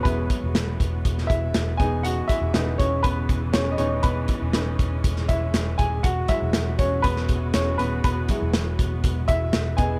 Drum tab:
HH |x-x-x-x-x-x-x-x-|x-x-x-x-x-x-x-x-|x-x-x-x-x-x-x-x-|x-x-x-x-x-x-x-x-|
SD |----o----o--o---|----o-------o---|----o----o--o---|----o----o--o---|
BD |o-o---o-o-o---o-|--o---o-o-o-----|o-o---o-o-o---o-|o-o---o-o-o-----|

HH |x-x-x-x-x-x-x-x-|
SD |----o-------o---|
BD |o-o---o-o-o---o-|